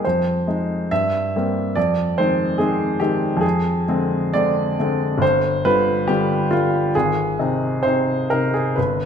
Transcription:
0.05 0.47 F2 soft
0.05 0.91 C5 medium
0.47 0.87 G#3 soft
0.47 0.87 D#4 soft
0.91 1.33 G2 soft
0.91 1.76 E5 medium
1.36 1.73 G3 soft
1.36 1.73 A#3 soft
1.36 1.73 C4 soft
1.75 2.17 F2 soft
1.75 2.18 D5 medium
2.18 2.56 D#3 soft
2.18 2.57 G#3 soft
2.18 2.56 C4 soft
2.18 2.59 C5 medium
2.58 2.97 D#3 soft
2.58 2.97 G#3 soft
2.58 2.98 C4 soft
2.58 3.00 G#4 medium
3.00 3.39 D#3 soft
3.00 3.40 G#3 soft
3.00 3.40 C4 soft
3.00 3.43 G4 medium
3.37 3.84 F2 soft
3.37 4.34 G#4 medium
3.88 4.31 D3 soft
3.88 4.31 G#3 soft
3.88 4.31 C4 soft
4.34 4.75 D3 soft
4.34 4.75 G#3 soft
4.34 4.75 C4 soft
4.34 5.21 D5 medium
4.79 5.18 D3 soft
4.79 5.18 G#3 soft
4.79 5.19 C4 soft
5.18 5.61 G1 medium
5.22 5.65 C5 medium
5.65 6.05 D3 soft
5.65 6.04 G3 soft
5.65 6.05 F4 soft
5.65 6.08 B4 medium
6.07 6.48 D3 soft
6.07 6.48 G3 soft
6.07 6.48 F4 soft
6.07 6.51 G4 medium
6.51 6.91 D3 soft
6.51 6.91 G3 soft
6.51 6.94 F4 medium
6.95 7.38 G#1 soft
6.95 7.84 G#4 medium
7.39 7.80 C3 soft
7.39 7.80 C4 soft
7.39 7.80 D#4 soft
7.83 8.26 C3 soft
7.83 8.26 C4 soft
7.83 8.26 D#4 soft
7.83 8.29 C5 medium
8.30 8.74 C3 soft
8.30 8.74 C4 soft
8.30 8.74 D#4 soft
8.30 8.53 A#4 medium
8.54 8.77 G#4 medium
8.76 9.05 G1 soft
8.76 9.05 B4 medium

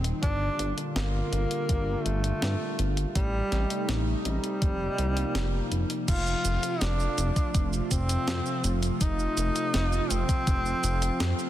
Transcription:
0.00 0.13 D#1 medium
0.00 3.11 A#2 medium
0.00 0.20 D#3 medium
0.00 0.19 G3 medium
0.00 0.20 D#4 loud
0.04 closed hi-hat medium
0.23 0.49 G1 medium
0.23 3.13 D3 medium
0.23 3.13 G3 medium
0.23 0.80 D4 loud
0.23 3.13 F4 loud
0.23 kick loud
0.23 closed hi-hat medium
0.59 0.73 G1 loud
0.59 closed hi-hat medium
0.78 closed hi-hat medium
0.96 1.22 G1 medium
0.96 2.07 A#3 loud
0.96 snare loud
0.96 closed hi-hat medium
1.33 1.46 G1 medium
1.33 closed hi-hat medium
1.51 closed hi-hat medium
1.69 1.95 G1 loud
1.69 kick loud
1.69 closed hi-hat medium
2.06 2.32 G1 loud
2.06 3.01 A3 medium
2.06 closed hi-hat medium
2.24 closed hi-hat medium
2.42 2.56 G2 loud
2.42 snare loud
2.42 closed hi-hat medium
2.79 3.05 G1 medium
2.79 closed hi-hat medium
2.97 closed hi-hat medium
3.15 3.42 A1 medium
3.15 6.05 C3 medium
3.15 4.11 G3 loud
3.15 4.60 G3 medium
3.15 4.60 A3 medium
3.15 6.05 D#4 loud
3.15 kick loud
3.15 closed hi-hat medium
3.52 3.65 A1 loud
3.52 snare soft
3.52 closed hi-hat medium
3.70 closed hi-hat medium
3.89 4.15 A1 medium
3.89 snare loud
3.89 closed hi-hat medium
4.25 4.38 A1 medium
4.25 5.94 G3 loud
4.25 closed hi-hat medium
4.44 closed hi-hat medium
4.62 4.88 F1 loud
4.62 6.07 F3 medium
4.62 6.07 A#3 medium
4.62 kick loud
4.62 closed hi-hat medium
4.98 5.25 C2 medium
4.98 closed hi-hat medium
5.17 closed hi-hat medium
5.35 5.61 F1 medium
5.35 snare loud
5.35 closed hi-hat medium
5.72 5.85 F1 loud
5.72 closed hi-hat medium
5.90 closed hi-hat medium
6.08 6.35 F1 loud
6.08 11.50 C3 medium
6.08 11.50 F3 medium
6.08 11.50 A3 medium
6.08 11.50 F4 medium
6.08 6.83 F4 loud
6.08 kick loud
6.08 closed hi-hat loud
6.08 crash loud
6.08 cabasa soft
6.27 cabasa soft
6.45 6.58 F1 loud
6.45 closed hi-hat medium
6.45 cabasa medium
6.63 closed hi-hat medium
6.63 cabasa soft
6.81 7.08 F1 medium
6.81 7.76 D4 medium
6.81 snare loud
6.81 closed hi-hat medium
6.81 cabasa soft
7.00 cabasa soft
7.18 7.31 F1 medium
7.18 closed hi-hat medium
7.18 cabasa medium
7.36 kick loud
7.36 closed hi-hat medium
7.36 cabasa soft
7.55 7.81 F1 loud
7.55 kick loud
7.55 closed hi-hat loud
7.55 cabasa soft
7.73 cabasa soft
7.91 8.17 F1 loud
7.91 8.86 C4 loud
7.91 kick medium
7.91 closed hi-hat medium
7.91 cabasa medium
8.09 closed hi-hat medium
8.09 cabasa soft
8.28 8.41 F2 loud
8.28 snare loud
8.28 closed hi-hat medium
8.28 cabasa soft
8.46 cabasa soft
8.64 8.91 F1 medium
8.64 closed hi-hat medium
8.64 cabasa medium
8.83 closed hi-hat medium
8.83 cabasa soft
9.01 9.27 F1 loud
9.01 10.12 D#4 loud
9.01 kick loud
9.01 closed hi-hat loud
9.01 cabasa soft
9.19 cabasa soft
9.37 9.51 F1 loud
9.37 closed hi-hat medium
9.37 cabasa medium
9.56 closed hi-hat medium
9.56 cabasa soft
9.74 10.00 F1 medium
9.74 snare loud
9.74 closed hi-hat loud
9.74 cabasa soft
9.92 cabasa soft
10.11 10.24 F1 medium
10.11 11.50 C4 loud
10.11 closed hi-hat medium
10.11 cabasa medium
10.29 kick loud
10.29 closed hi-hat medium
10.29 cabasa soft
10.47 10.74 F1 loud
10.47 kick loud
10.47 closed hi-hat loud
10.47 cabasa soft
10.65 cabasa soft
10.84 11.10 F1 loud
10.84 closed hi-hat medium
10.84 cabasa medium
11.02 closed hi-hat medium
11.02 cabasa soft
11.20 11.34 F2 loud
11.20 snare loud
11.20 closed hi-hat loud
11.20 cabasa soft
11.39 cabasa soft

